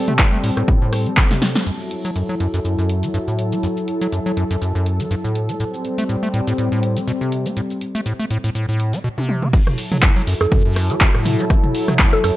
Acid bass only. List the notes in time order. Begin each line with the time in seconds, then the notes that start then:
0.08 A3
0.19 A2
0.33 A3
0.44 A2
0.57 A2
0.68 A2
0.82 A2
1.06 A3
1.17 B2
1.31 C3
1.56 C4
1.66 F#2
2.05 F#3
2.16 F#2
2.29 F#3
2.40 F#2
2.54 F#2
2.65 F#2
2.78 F#2
3.03 F#3
3.14 G2
3.28 A2
3.52 A3
3.63 F#2
4.01 F#3
4.12 F#2
4.26 F#3
4.37 F#2
4.51 F#2
4.62 F#2
4.75 F#2
5.00 F#3
5.11 G2
5.24 A2
5.49 A3
5.60 A2
5.98 A3
6.09 A2
6.23 A3
6.34 A2
6.47 A2
6.58 A2
6.72 A2
6.97 A3
7.08 B2
7.21 C3
7.46 C4
7.57 A2
7.95 A3
8.06 A2
8.20 A3
8.31 A2
8.44 A2
8.55 A2
8.69 A2
8.93 A3
9.04 B2
9.18 C3
9.42 C4
9.53 F#2
9.92 F#3
10.03 F#2
10.16 F#3
10.27 F#2
10.41 F#2
10.52 F#2
10.65 F#2
10.90 F#3
11.01 G2
11.15 A2
11.39 A3
11.50 F#2
11.88 F#3
11.99 F#2
12.13 F#3
12.24 F#2